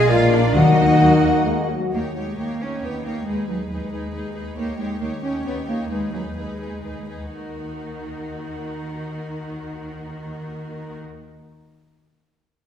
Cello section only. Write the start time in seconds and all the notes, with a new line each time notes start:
0.09 F4
0.31 D4
0.54 D#4
1.93 A#3
2.16 G#3
2.39 A#3
2.60 C#4
2.82 B3
3.04 A#3
3.26 G#3
3.48 F#3
3.70 G#3
4.57 A#3
4.79 G#3
5.01 A#3
5.23 C#4
5.46 B3
5.67 A#3
5.90 G#3
6.13 F#3
6.36 G#3
7.32 D#3